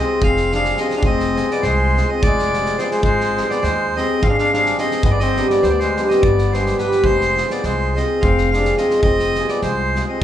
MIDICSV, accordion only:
0, 0, Header, 1, 2, 480
1, 0, Start_track
1, 0, Tempo, 574713
1, 854, Time_signature, 7, 3, 24, 8
1, 4691, Tempo, 568720
1, 8591, End_track
2, 0, Start_track
2, 0, Title_t, "Accordion"
2, 0, Program_c, 0, 21
2, 0, Note_on_c, 0, 75, 97
2, 190, Note_off_c, 0, 75, 0
2, 197, Note_on_c, 0, 77, 95
2, 446, Note_off_c, 0, 77, 0
2, 461, Note_on_c, 0, 77, 102
2, 663, Note_off_c, 0, 77, 0
2, 664, Note_on_c, 0, 75, 93
2, 801, Note_off_c, 0, 75, 0
2, 807, Note_on_c, 0, 77, 73
2, 857, Note_off_c, 0, 77, 0
2, 883, Note_on_c, 0, 75, 107
2, 1268, Note_on_c, 0, 74, 82
2, 1271, Note_off_c, 0, 75, 0
2, 1354, Note_on_c, 0, 72, 85
2, 1370, Note_off_c, 0, 74, 0
2, 1749, Note_on_c, 0, 75, 84
2, 1758, Note_off_c, 0, 72, 0
2, 1859, Note_on_c, 0, 74, 104
2, 1862, Note_off_c, 0, 75, 0
2, 2321, Note_on_c, 0, 72, 86
2, 2338, Note_off_c, 0, 74, 0
2, 2366, Note_on_c, 0, 74, 73
2, 2371, Note_off_c, 0, 72, 0
2, 2424, Note_off_c, 0, 74, 0
2, 2434, Note_on_c, 0, 72, 80
2, 2528, Note_off_c, 0, 72, 0
2, 2541, Note_on_c, 0, 72, 93
2, 2920, Note_on_c, 0, 74, 82
2, 2940, Note_off_c, 0, 72, 0
2, 3023, Note_on_c, 0, 72, 95
2, 3037, Note_off_c, 0, 74, 0
2, 3312, Note_on_c, 0, 75, 98
2, 3318, Note_off_c, 0, 72, 0
2, 3528, Note_on_c, 0, 77, 100
2, 3541, Note_off_c, 0, 75, 0
2, 3570, Note_off_c, 0, 77, 0
2, 3583, Note_on_c, 0, 77, 75
2, 3654, Note_off_c, 0, 77, 0
2, 3670, Note_on_c, 0, 77, 106
2, 3778, Note_off_c, 0, 77, 0
2, 3790, Note_on_c, 0, 77, 99
2, 3986, Note_off_c, 0, 77, 0
2, 4006, Note_on_c, 0, 75, 93
2, 4199, Note_off_c, 0, 75, 0
2, 4212, Note_on_c, 0, 75, 109
2, 4266, Note_on_c, 0, 74, 83
2, 4278, Note_off_c, 0, 75, 0
2, 4340, Note_on_c, 0, 75, 103
2, 4345, Note_off_c, 0, 74, 0
2, 4576, Note_off_c, 0, 75, 0
2, 4606, Note_on_c, 0, 74, 76
2, 4699, Note_on_c, 0, 72, 96
2, 4717, Note_off_c, 0, 74, 0
2, 4761, Note_on_c, 0, 74, 80
2, 4779, Note_off_c, 0, 72, 0
2, 4839, Note_on_c, 0, 72, 91
2, 4844, Note_off_c, 0, 74, 0
2, 5089, Note_on_c, 0, 75, 84
2, 5104, Note_off_c, 0, 72, 0
2, 5198, Note_on_c, 0, 74, 81
2, 5211, Note_off_c, 0, 75, 0
2, 5455, Note_on_c, 0, 72, 82
2, 5468, Note_off_c, 0, 74, 0
2, 5660, Note_off_c, 0, 72, 0
2, 5680, Note_on_c, 0, 71, 82
2, 5884, Note_on_c, 0, 72, 101
2, 5900, Note_off_c, 0, 71, 0
2, 6289, Note_on_c, 0, 74, 73
2, 6293, Note_off_c, 0, 72, 0
2, 6402, Note_off_c, 0, 74, 0
2, 6402, Note_on_c, 0, 72, 86
2, 6672, Note_on_c, 0, 75, 81
2, 6688, Note_off_c, 0, 72, 0
2, 6879, Note_on_c, 0, 77, 84
2, 6902, Note_off_c, 0, 75, 0
2, 7123, Note_off_c, 0, 77, 0
2, 7135, Note_on_c, 0, 77, 92
2, 7340, Note_off_c, 0, 77, 0
2, 7360, Note_on_c, 0, 75, 76
2, 7555, Note_off_c, 0, 75, 0
2, 7568, Note_on_c, 0, 75, 110
2, 7960, Note_on_c, 0, 74, 79
2, 7973, Note_off_c, 0, 75, 0
2, 8064, Note_off_c, 0, 74, 0
2, 8077, Note_on_c, 0, 72, 92
2, 8437, Note_off_c, 0, 72, 0
2, 8467, Note_on_c, 0, 75, 72
2, 8578, Note_off_c, 0, 75, 0
2, 8591, End_track
0, 0, End_of_file